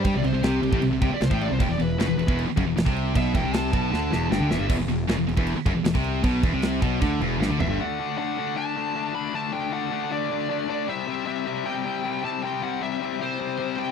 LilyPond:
<<
  \new Staff \with { instrumentName = "Lead electric guitar" } { \time 4/4 \key e \minor \tempo 4 = 155 g''16 d''16 c''8 g'4 r8 g''16 d''16 c''16 g''16 d''16 c''16 | g''16 d''16 b'8 b'4 r2 | e''8 g''8 a''2 g''8 e''8 | r1 |
r2. r8 e''8 | fis''4 fis''4 a''4. b''8 | a''8 g''8 fis''4 d''4. d''8 | e''4 e''4 g''4. a''8 |
g''8 fis''8 e''4 c''4. g''8 | }
  \new Staff \with { instrumentName = "Distorted electric guitar" } { \clef bass \time 4/4 \key e \minor g16 c16 c16 c16 c8 c16 a,16 c16 c16 c16 r16 c16 a,8 c16 | e,16 e,16 e,8 fis,16 e,16 e,16 e,8 r16 fis,16 e,16 e,16 c8. | b,8 e,16 c8. b,8 d8 e,8 g,16 d16 e,16 g,16 | e,16 e,16 e,8 fis,16 e,16 e,16 e,8 r16 fis,16 e,16 e,16 c8. |
b,8 e,16 c8. b,8 d8 e,8 g,16 d16 e,16 g,16 | <d a d'>8 <d a d'>8 <d a d'>8 <d a d'>8 <d a d'>8 <d a d'>8 <d a d'>8 <d a d'>8 | <d a d'>8 <d a d'>8 <d a d'>8 <d a d'>8 <d a d'>8 <d a d'>8 <d a d'>8 <d a d'>8 | <c g c'>8 <c g c'>8 <c g c'>8 <c g c'>8 <c g c'>8 <c g c'>8 <c g c'>8 <c g c'>8 |
<c g c'>8 <c g c'>8 <c g c'>8 <c g c'>8 <c g c'>8 <c g c'>8 <c g c'>8 <c g c'>8 | }
  \new Staff \with { instrumentName = "Distorted electric guitar" } { \clef bass \time 4/4 \key e \minor g16 c16 c16 c16 c8 c16 a,16 c16 c16 c16 r16 c16 a,8 c16 | e,16 e,16 e,8 fis,16 e,16 e,16 e,8 r16 fis,16 e,16 e,16 c8. | b,8 e,16 c8. b,8 d8 e,8 g,16 d16 e,16 g,16 | e,16 e,16 e,8 fis,16 e,16 e,16 e,8 r16 fis,16 e,16 e,16 c8. |
b,8 e,16 c8. b,8 d8 e,8 g,16 d16 e,16 g,16 | r1 | r1 | r1 |
r1 | }
  \new Staff \with { instrumentName = "Distorted electric guitar" } { \clef bass \time 4/4 \key e \minor g16 c16 c16 c16 c8 c16 a,16 c16 c16 c16 r16 c16 a,8 c16 | e,16 e,16 e,8 fis,16 e,16 e,16 e,8 r16 fis,16 e,16 e,16 c8. | b,8 e,16 c8. b,8 d8 e,8 g,16 d16 e,16 g,16 | e,16 e,16 e,8 fis,16 e,16 e,16 e,8 r16 fis,16 e,16 e,16 c8. |
b,8 e,16 c8. b,8 d8 e,8 g,16 d16 e,16 g,16 | r1 | r1 | r1 |
r1 | }
  \new Staff \with { instrumentName = "Picked electric bass" } { \clef bass \time 4/4 \key e \minor g,16 c,16 c,16 c,16 c,8 c,16 a,,16 c,16 c,16 c,16 r16 c,16 a,,8 c,16 | e,,16 e,,16 e,,8 fis,,16 e,,16 e,,16 e,,8 r16 fis,,16 e,,16 e,,16 c,8. | b,,8 e,,16 c,8. b,,8 d,8 e,,8 g,,16 d,16 e,,16 g,,16 | e,,16 e,,16 e,,8 fis,,16 e,,16 e,,16 e,,8 r16 fis,,16 e,,16 e,,16 c,8. |
b,,8 e,,16 c,8. b,,8 d,8 e,,8 g,,16 d,16 e,,16 g,,16 | r1 | r1 | r1 |
r1 | }
  \new DrumStaff \with { instrumentName = "Drums" } \drummode { \time 4/4 <cymc bd>8 cymc8 <cymc sn>8 cymc16 bd16 cymc8 <cymc bd>8 <cymc sn>16 bd16 cymc8 | <cymc bd>8 cymc8 <cymc sn>8 cymc16 bd16 cymc8 <cymc bd>8 <cymc sn>16 bd16 cymc8 | <cymc bd>8 <cymc bd>8 <cymc sn>8 <cymc bd>8 sn8 sn8 sn8 sn8 | <cymc bd>8 cymc8 <cymc sn>8 cymc16 bd16 cymc8 <cymc bd>8 <cymc sn>16 bd16 cymc8 |
<cymc bd>8 <cymc bd>8 <cymc sn>8 <cymc bd>8 <cymc bd>8 cymc8 sn8 tomfh8 | r4 r4 r4 r4 | r4 r4 r4 r4 | r4 r4 r4 r4 |
r4 r4 r4 r4 | }
>>